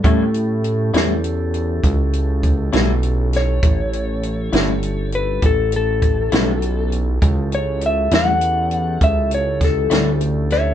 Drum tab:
HH |xxxxxxxxxxxx|xxxxxxxxxxxx|xxxxxxxxxxxx|
SD |---o-----o-o|---o-----o--|---o----oo-o|
BD |o-----o-o---|o-----o-o---|o-----o-o---|